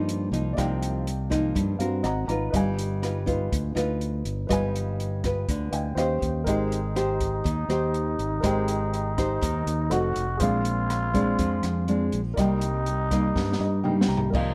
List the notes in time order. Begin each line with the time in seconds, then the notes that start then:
Already playing: G2 F3 A#3 D#4 D5 D#5 F5 A#5
0.09 closed hi-hat
0.32 C2 F3 A#3 D#4, closed hi-hat
0.53 C3 D5 D#5
0.57 C2 F3 A#3 D#4 F5 G5, kick, cross-stick, closed hi-hat
0.82 closed hi-hat
1.07 closed hi-hat
1.30 F3 A#3 D#4, kick, cross-stick, closed hi-hat
1.55 G2, kick, closed hi-hat
1.79 G2 C4 F#4 A#4 F5, closed hi-hat
2.03 G#1 D#5 F#5 A#5, cross-stick, closed hi-hat
2.28 G#1 D#4 F4 B4 A#5, closed hi-hat
2.50 G1 G3 B4 D#5 F5, kick, closed hi-hat
2.56 G#5
2.79 closed hi-hat
3.02 D#4 F4 B4, cross-stick, closed hi-hat
3.26 D#4 F4 B4, kick, closed hi-hat
3.52 D2, kick, closed hi-hat
3.75 D2 D#4 F4 B4, cross-stick, closed hi-hat
4.01 closed hi-hat
4.25 G1, closed hi-hat
4.47 G1 G3 D#4 F4 B4 D#5 F5, kick, cross-stick, closed hi-hat
4.53 G#5
4.76 closed hi-hat
5.00 closed hi-hat
5.24 F4 B4, kick, cross-stick, closed hi-hat
5.48 D2 D3, kick, closed hi-hat
5.71 D2 B4 D#5 F5 G5 G#5, closed hi-hat
5.95 D#2 C#4 G4 C5 D#5 F5 G5, cross-stick, closed hi-hat
6.22 D#2, kick, closed hi-hat
6.44 G#1 G#3 D#4 G4 A#4 C5 D#5, kick, closed hi-hat
6.50 G5
6.72 closed hi-hat
6.95 D#4 G4 C5, cross-stick, closed hi-hat
7.21 kick, closed hi-hat
7.44 D#2 D#3, kick, closed hi-hat
7.69 D#2 D#4 G4 C5, cross-stick, closed hi-hat
7.94 closed hi-hat
8.19 G#1, closed hi-hat
8.40 G#1 G#3 D#4 G4 A#4 C5 D#5, kick, cross-stick, closed hi-hat
8.46 G5
8.68 closed hi-hat
8.94 closed hi-hat
9.18 D#4 G4 C5, kick, cross-stick, closed hi-hat
9.41 D#2 D#3, kick, closed hi-hat
9.67 D#2, closed hi-hat
9.90 F1 A3 D#4 F#4 A4 C5 D#5 F#5, cross-stick, closed hi-hat
10.16 F1, closed hi-hat
10.37 A#1 A#2 G#3 C4 F4 G#4 C5, kick, closed hi-hat
10.42 D4 D5 F5
10.65 closed hi-hat
10.90 cross-stick, closed hi-hat
11.14 G#3 C4 D4, kick, closed hi-hat
11.38 F2 F3, kick, closed hi-hat
11.63 F2, cross-stick, closed hi-hat
11.88 G#3 C4 D4, closed hi-hat
12.12 A#1, closed hi-hat
12.34 C2 D#4 A#4 D5, kick, cross-stick, closed hi-hat
12.38 C3 G3 A#3 D#4 D#5 G5
12.61 closed hi-hat
12.86 closed hi-hat
13.11 G3 A#3 D#4, kick, cross-stick, closed hi-hat
13.36 G2, kick, snare
13.52 snare
13.60 G2 D#5
13.84 G3 A#3 D#4 G5, mid tom
14.01 snare
14.08 C2 A#5
14.17 floor tom
14.30 C2 C3 F3 A#3 D#4 A#4 D5, kick
14.34 D#4 D#5 F5, crash